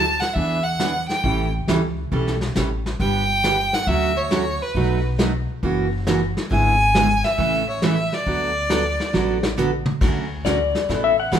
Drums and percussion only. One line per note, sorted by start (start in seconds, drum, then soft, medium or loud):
0.22 snare soft
0.35 brush sweep soft
0.35 kick soft
0.80 snare medium
0.80 hi-hat pedal medium
1.10 snare soft
1.24 brush sweep soft
1.24 kick soft
1.68 snare medium
1.68 hi-hat pedal medium
2.12 brush sweep soft
2.12 kick soft
2.27 snare soft
2.41 snare soft
2.55 snare medium
2.55 hi-hat pedal medium
2.86 snare soft
3.00 brush sweep soft
3.00 kick soft
3.44 snare medium
3.44 hi-hat pedal medium
3.73 snare soft
3.87 brush sweep soft
3.87 kick soft
4.31 snare medium
4.31 hi-hat pedal medium
4.75 brush sweep soft
4.75 kick soft
5.19 snare medium
5.19 hi-hat pedal medium
5.63 brush sweep medium
5.63 kick soft
6.07 snare medium
6.07 hi-hat pedal medium
6.37 snare soft
6.51 brush sweep soft
6.51 kick soft
6.95 snare medium
6.95 hi-hat pedal medium
7.24 snare soft
7.38 brush sweep soft
7.38 kick soft
7.82 snare medium
7.82 hi-hat pedal soft
8.12 snare soft
8.26 brush sweep soft
8.26 kick soft
8.70 snare medium
8.70 hi-hat pedal medium
9.00 snare soft
9.14 snare soft
9.43 snare medium
9.58 hi-hat pedal medium
9.58 mid tom medium
9.86 mid tom medium
10.01 brush sweep soft
10.01 kick medium
10.01 snare soft
10.01 crash medium
10.45 kick soft
10.45 snare medium
10.45 hi-hat pedal medium
10.75 snare soft
10.89 brush sweep soft
10.89 kick soft
10.89 snare soft
11.32 kick soft
11.32 snare medium
11.32 hi-hat pedal medium